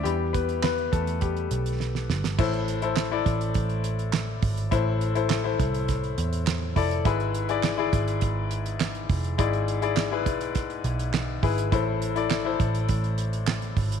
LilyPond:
<<
  \new Staff \with { instrumentName = "Grand piano" } { \time 4/4 \key e \phrygian \tempo 4 = 103 g'8 <b b'>8 <b b'>8 <a a'>8 <g g'>4. r8 | \key a \minor <e' a' c''>8 r16 <e' a' c''>16 r16 <e' a' d''>4. r4 r16 | <e' a' c''>8 r16 <e' a' c''>16 r16 <e' a' c''>4. r8. <e' a' d''>16 r16 | <e' gis' b'>8 r16 <e' gis' d''>16 r16 <e' gis' d''>4. r4 r16 |
<e' gis' d''>8 r16 <e' gis' d''>16 r16 <e' gis' b'>4. r8. <e' gis' b'>16 r16 | <e' a' c''>8 r16 <e' a' d''>16 r16 <e' a' c''>4. r4 r16 | }
  \new Staff \with { instrumentName = "Grand piano" } { \clef bass \time 4/4 \key e \phrygian <g b e'>1 | \key a \minor a,4. r2 r8 | a,4. r2 r8 | gis,4. r2 r8 |
gis,4. r2 r8 | a,4. r2 r8 | }
  \new Staff \with { instrumentName = "Picked electric bass" } { \clef bass \time 4/4 \key e \phrygian e,4. e,4 b,,4 g,,8 | \key a \minor a,,4. a,,8 a,,4. gis,,8 | a,,4. c,4 e,4 f,,8 | gis,,4. gis,,8 gis,,4. f,,8 |
gis,,4. b,,4 b,,4 gis,,8 | a,,4. a,,8 a,,4. gis,,8 | }
  \new DrumStaff \with { instrumentName = "Drums" } \drummode { \time 4/4 hh8 <hh bd>16 hh16 <hc sn>16 hh16 <hh bd>16 hh16 <hh bd>16 hh16 hh16 hh16 sn16 sn16 sn16 sn16 | <cymc bd>16 hh16 hh16 hh16 <hc sn>8 <hh bd>16 hh16 <hh bd>16 hh16 hh16 hh16 <hc sn>8 <hho bd>16 hh16 | <hh bd>8 hh16 hh16 <hc sn>8 <hh bd>16 hh16 <hh bd sn>16 hh16 hh16 hh16 <hc sn>8 <hho bd>16 hh16 | <hh bd>16 hh16 hh16 hh16 <hc sn>8 <hh bd>16 hh16 <hh bd>8 hh16 hh16 <hc sn>16 hh16 <hho bd>16 hh16 |
<hh bd>16 hh16 hh16 hh16 <hc sn>8 <hh bd>16 hh16 <hh bd sn>16 hh16 hh16 hh16 <hc sn>8 <hho bd>16 hh16 | <hh bd>8 hh16 hh16 <hc sn>8 <hh bd>16 hh16 <hh bd>16 hh16 hh16 hh16 <hc sn>16 hh16 <hho bd>16 hh16 | }
>>